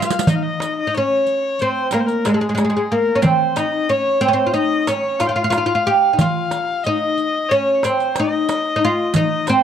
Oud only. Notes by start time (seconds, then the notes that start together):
Already playing: F4
0.27 D#4
0.87 D#4
0.97 C#4
1.62 C4
1.94 A#3
2.26 G#3
2.34 G#3
2.41 G#3
2.49 G#3
2.55 G#3
2.65 G#3
2.70 G#3
2.77 G#3
2.92 A#3
3.15 C#4
3.22 C4
3.56 D#4
3.89 C#4
4.21 C4
4.28 C#4
4.33 C4
4.47 F4
4.54 D#4
4.88 C#4
5.21 F4
5.29 F4
5.36 F4
5.44 F4
5.50 F4
5.58 F4
5.66 F4
5.75 F4
5.87 G4
6.13 D#4
6.21 F4
6.87 D#4
7.51 C#4
7.85 C4
8.20 D#4
8.76 D#4
8.85 F4
9.16 D#4
9.49 C4